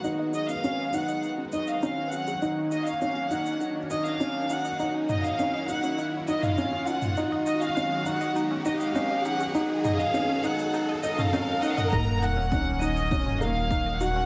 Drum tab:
SH |x-xxx-xxx-xxx-xx|x-xxx-xxx-xxx-xx|x-xxx-xxx-xxx-xx|x-xxx-xxx-xxx-xx|
T2 |----------------|----------------|--o--------o---o|----------------|
BD |----------------|----------------|----------------|----------------|

SH |x-xxx-xxx-xxx-xx|x-x-x-xxx-x-x-x-|
T2 |--o--------o---o|---------o------|
BD |----------------|o---o---o---o---|